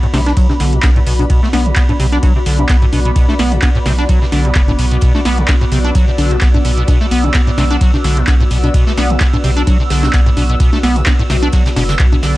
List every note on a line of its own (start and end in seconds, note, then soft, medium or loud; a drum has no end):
0.00 0.07 A2 loud
0.00 12.37 B3 medium
0.00 12.37 F#4 medium
0.00 12.37 D5 medium
0.00 5.52 B5 medium
0.00 closed hi-hat soft
0.14 0.33 B1 medium
0.14 0.21 C3 loud
0.14 snare medium
0.14 closed hi-hat medium
0.14 open hi-hat medium
0.14 high conga medium
0.26 0.32 D4 loud
0.26 snare soft
0.26 closed hi-hat medium
0.37 0.47 F#3 medium
0.37 kick loud
0.37 closed hi-hat medium
0.37 ride medium
0.49 0.53 C3 medium
0.49 snare medium
0.49 high conga medium
0.60 0.80 B1 loud
0.60 0.75 D3 medium
0.60 snare soft
0.60 closed hi-hat medium
0.60 open hi-hat loud
0.73 0.79 B2 medium
0.73 closed hi-hat medium
0.83 1.03 B1 medium
0.83 0.91 B3 medium
0.83 kick loud
0.83 snare loud
0.83 clap loud
0.83 closed hi-hat medium
0.83 ride medium
0.83 high conga medium
0.96 1.00 A2 loud
0.96 closed hi-hat soft
1.07 1.26 B1 loud
1.07 1.14 B2 medium
1.07 closed hi-hat medium
1.07 open hi-hat loud
1.19 1.25 B2 medium
1.19 closed hi-hat medium
1.19 closed hi-hat soft
1.19 high conga medium
1.30 1.41 B2 medium
1.30 kick loud
1.30 closed hi-hat medium
1.30 ride medium
1.43 1.49 A3 medium
1.43 snare medium
1.53 1.73 B1 loud
1.53 1.68 B3 loud
1.53 snare medium
1.53 closed hi-hat medium
1.53 open hi-hat loud
1.53 high conga medium
1.66 1.72 B2 medium
1.66 closed hi-hat soft
1.76 1.84 B3 medium
1.76 kick loud
1.76 snare loud
1.76 clap loud
1.76 closed hi-hat medium
1.76 ride medium
1.89 1.93 A2 loud
1.89 closed hi-hat soft
1.89 high conga medium
2.00 2.19 B1 medium
2.00 2.07 C3 loud
2.00 closed hi-hat medium
2.00 open hi-hat medium
2.12 2.18 D4 loud
2.12 snare soft
2.12 closed hi-hat medium
2.23 2.34 F#3 medium
2.23 kick loud
2.23 closed hi-hat medium
2.23 ride medium
2.23 high conga medium
2.36 2.39 C3 medium
2.46 2.66 B1 loud
2.46 2.60 D3 medium
2.46 snare soft
2.46 closed hi-hat medium
2.46 open hi-hat loud
2.59 2.65 B2 medium
2.59 closed hi-hat medium
2.59 high conga medium
2.69 2.89 B1 loud
2.69 2.77 B3 medium
2.69 kick loud
2.69 snare loud
2.69 clap loud
2.69 closed hi-hat medium
2.69 ride medium
2.82 2.86 A2 loud
2.82 closed hi-hat soft
2.93 3.12 B1 loud
2.93 3.00 B2 medium
2.93 closed hi-hat medium
2.93 open hi-hat medium
2.93 high conga medium
3.05 3.11 B2 medium
3.05 closed hi-hat medium
3.16 3.27 B2 medium
3.16 kick loud
3.16 closed hi-hat medium
3.16 ride medium
3.29 3.35 A3 medium
3.29 snare medium
3.29 high conga medium
3.39 3.59 B1 medium
3.39 3.54 B3 loud
3.39 snare medium
3.39 closed hi-hat medium
3.39 open hi-hat loud
3.52 3.58 B2 medium
3.52 closed hi-hat soft
3.62 3.70 B3 medium
3.62 kick loud
3.62 snare loud
3.62 clap loud
3.62 closed hi-hat medium
3.62 ride medium
3.62 high conga medium
3.75 3.79 A2 loud
3.75 closed hi-hat soft
3.86 4.05 B1 medium
3.86 3.93 C3 loud
3.86 snare medium
3.86 closed hi-hat medium
3.86 open hi-hat medium
3.98 4.04 D4 loud
3.98 snare soft
3.98 closed hi-hat soft
3.98 high conga medium
4.09 4.20 F#3 medium
4.09 kick loud
4.09 closed hi-hat loud
4.09 closed hi-hat medium
4.09 ride medium
4.22 4.25 C3 medium
4.22 snare soft
4.32 4.52 B1 loud
4.32 4.47 D3 medium
4.32 snare soft
4.32 closed hi-hat medium
4.32 open hi-hat loud
4.32 high conga medium
4.45 4.51 B2 medium
4.45 closed hi-hat medium
4.55 4.75 F#1 loud
4.55 4.63 B3 medium
4.55 kick loud
4.55 snare loud
4.55 clap loud
4.55 closed hi-hat medium
4.55 ride medium
4.68 4.72 A2 loud
4.68 closed hi-hat soft
4.68 high conga medium
4.79 4.98 B1 loud
4.79 4.86 B2 medium
4.79 closed hi-hat medium
4.79 open hi-hat loud
4.91 4.97 B2 medium
4.91 closed hi-hat soft
4.91 closed hi-hat medium
5.01 5.13 B2 medium
5.01 kick loud
5.01 closed hi-hat medium
5.01 ride medium
5.15 5.21 A3 medium
5.15 snare medium
5.15 high conga medium
5.25 5.45 B1 loud
5.25 5.40 B3 loud
5.25 snare medium
5.25 closed hi-hat medium
5.25 open hi-hat loud
5.38 5.44 B2 medium
5.38 closed hi-hat medium
5.48 5.56 B3 medium
5.48 12.37 E6 medium
5.48 kick loud
5.48 snare loud
5.48 clap loud
5.48 closed hi-hat loud
5.48 closed hi-hat medium
5.48 ride medium
5.48 high conga medium
5.61 5.65 A2 loud
5.61 closed hi-hat soft
5.72 5.91 B1 medium
5.72 5.79 C3 loud
5.72 closed hi-hat medium
5.72 open hi-hat medium
5.84 5.90 D4 loud
5.84 snare soft
5.84 closed hi-hat medium
5.84 high conga medium
5.95 6.06 F#3 medium
5.95 kick loud
5.95 closed hi-hat medium
5.95 closed hi-hat loud
5.95 ride medium
6.08 6.11 C3 medium
6.18 6.38 B1 loud
6.18 6.33 D3 medium
6.18 snare soft
6.18 closed hi-hat medium
6.18 open hi-hat loud
6.18 high conga medium
6.31 6.37 B2 medium
6.31 closed hi-hat medium
6.41 6.61 B1 loud
6.41 6.49 B3 medium
6.41 kick loud
6.41 snare loud
6.41 clap loud
6.41 closed hi-hat medium
6.41 ride medium
6.54 6.58 A2 loud
6.54 closed hi-hat soft
6.54 high conga medium
6.65 6.84 B1 loud
6.65 6.72 B2 medium
6.65 closed hi-hat medium
6.65 open hi-hat medium
6.78 6.83 B2 medium
6.78 closed hi-hat medium
6.88 6.99 B2 medium
6.88 kick loud
6.88 closed hi-hat medium
6.88 ride medium
6.88 high conga medium
7.01 7.07 A3 medium
7.01 snare medium
7.11 7.31 B1 loud
7.11 7.26 B3 loud
7.11 closed hi-hat medium
7.11 open hi-hat loud
7.24 7.30 B2 medium
7.24 closed hi-hat soft
7.24 closed hi-hat medium
7.24 high conga medium
7.34 7.42 B3 medium
7.34 kick loud
7.34 snare loud
7.34 clap loud
7.34 closed hi-hat medium
7.34 ride medium
7.47 7.51 A2 loud
7.47 closed hi-hat soft
7.57 7.77 B1 medium
7.57 7.65 C3 loud
7.57 snare medium
7.57 closed hi-hat medium
7.57 open hi-hat medium
7.57 high conga medium
7.70 7.76 D4 loud
7.70 snare soft
7.70 closed hi-hat medium
7.81 7.92 F#3 medium
7.81 kick loud
7.81 closed hi-hat medium
7.81 ride medium
7.94 7.97 C3 medium
7.94 snare soft
7.94 high conga medium
8.04 8.24 B1 loud
8.04 8.19 D3 medium
8.04 snare soft
8.04 closed hi-hat medium
8.04 open hi-hat loud
8.17 8.23 B2 medium
8.17 closed hi-hat medium
8.27 8.47 B1 loud
8.27 8.35 B3 medium
8.27 kick loud
8.27 snare loud
8.27 clap loud
8.27 closed hi-hat medium
8.27 ride medium
8.27 high conga medium
8.40 8.44 A2 loud
8.40 closed hi-hat soft
8.50 8.70 B1 loud
8.50 8.58 B2 medium
8.50 closed hi-hat medium
8.50 open hi-hat medium
8.64 8.69 B2 medium
8.64 closed hi-hat soft
8.64 closed hi-hat medium
8.64 high conga medium
8.74 8.85 B2 medium
8.74 kick loud
8.74 closed hi-hat medium
8.74 ride medium
8.87 8.93 A3 medium
8.87 snare medium
8.97 9.17 B1 medium
8.97 9.12 B3 loud
8.97 snare medium
8.97 closed hi-hat medium
8.97 open hi-hat loud
8.97 high conga medium
9.10 9.16 B2 medium
9.10 closed hi-hat medium
9.20 9.28 B3 medium
9.20 kick loud
9.20 snare loud
9.20 clap loud
9.20 closed hi-hat medium
9.20 ride medium
9.33 9.37 A2 loud
9.33 closed hi-hat soft
9.33 high conga medium
9.44 9.63 B1 medium
9.44 9.51 C3 loud
9.44 closed hi-hat medium
9.44 open hi-hat medium
9.57 9.62 D4 loud
9.57 snare soft
9.57 closed hi-hat medium
9.67 9.78 F#3 medium
9.67 kick loud
9.67 closed hi-hat loud
9.67 closed hi-hat medium
9.67 ride medium
9.67 high conga medium
9.80 9.83 C3 medium
9.90 10.10 B1 loud
9.90 10.05 D3 medium
9.90 snare medium
9.90 closed hi-hat medium
9.90 open hi-hat loud
10.03 10.09 B2 medium
10.03 snare loud
10.03 closed hi-hat medium
10.03 high conga medium
10.13 10.33 B1 loud
10.13 10.21 B3 medium
10.13 kick loud
10.13 snare loud
10.13 clap loud
10.13 closed hi-hat medium
10.13 ride medium
10.26 10.30 A2 loud
10.26 closed hi-hat soft
10.37 10.56 B1 loud
10.37 10.44 B2 medium
10.37 closed hi-hat medium
10.37 open hi-hat medium
10.37 high conga medium
10.49 10.55 B2 medium
10.49 closed hi-hat medium
10.60 10.71 B2 medium
10.60 kick loud
10.60 closed hi-hat medium
10.60 ride medium
10.73 10.79 A3 medium
10.73 snare medium
10.73 closed hi-hat soft
10.73 high conga medium
10.83 11.03 B1 loud
10.83 10.98 B3 loud
10.83 snare medium
10.83 closed hi-hat medium
10.83 open hi-hat loud
10.95 11.02 B2 medium
10.95 closed hi-hat soft
10.95 closed hi-hat medium
11.06 11.14 B3 medium
11.06 kick loud
11.06 snare loud
11.06 clap loud
11.06 closed hi-hat medium
11.06 ride medium
11.06 high conga medium
11.19 11.23 A2 loud
11.19 closed hi-hat soft
11.30 11.50 B1 medium
11.30 11.37 C3 loud
11.30 snare medium
11.30 closed hi-hat medium
11.30 open hi-hat medium
11.42 11.48 D4 loud
11.42 snare soft
11.42 closed hi-hat medium
11.42 high conga medium
11.52 11.64 F#3 medium
11.52 kick loud
11.52 snare loud
11.52 closed hi-hat medium
11.52 ride medium
11.66 11.69 C3 medium
11.66 snare loud
11.66 closed hi-hat medium
11.66 closed hi-hat soft
11.76 11.96 F#1 loud
11.76 11.83 B2 loud
11.76 snare loud
11.76 snare soft
11.76 closed hi-hat medium
11.76 open hi-hat loud
11.76 high conga medium
11.89 11.95 D3 medium
11.89 snare loud
11.89 closed hi-hat medium
11.99 12.19 B1 medium
11.99 12.07 B2 medium
11.99 kick loud
11.99 clap loud
11.99 closed hi-hat medium
11.99 ride medium
12.12 12.16 B2 loud
12.12 closed hi-hat soft
12.12 high conga medium
12.23 12.37 B1 medium
12.23 12.37 D3 medium
12.23 snare loud
12.23 closed hi-hat medium
12.23 open hi-hat medium